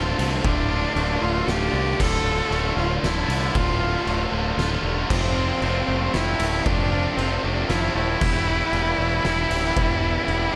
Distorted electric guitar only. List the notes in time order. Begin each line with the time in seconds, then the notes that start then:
Already playing: D2 D3 A3 F4
0.44 D2 A2 D3 A3 F4
0.70 D3 A3 F4
0.96 D2 A2 D3 A3 F4
1.22 D3 A3 F4
2.00 D2 A2 D3 A3 F4
2.26 D3 A3 F4
2.51 D2 A2 D3 A3 F4
2.77 D3 A3 F4
3.54 D2 A2 D3 A3 F4
3.80 D3 A3 F4
4.06 D2 A2 D3 A3 F4
4.32 D3 A3 F4
5.09 F2 C3 F3 A3 C4 F4
5.36 F3 A3 C4 F4
5.61 F2 C3 F3 A3 C4 F4
5.87 F3 A3 C4 F4
6.64 F2 C3 F3 A3 C4 F4
6.91 F3 A3 C4 F4
7.16 F2 C3 F3 A3 C4 F4
7.43 F3 A3 C4 F4
8.21 E2 B2 E3 G3 E4
8.47 E3 G3 E4
8.73 E2 B2 E3 G3 E4
8.98 E3 G3 E4
9.76 E2 B2 E3 G3 E4
10.01 E3 G3 E4
10.27 E2 B2 E3 G3 E4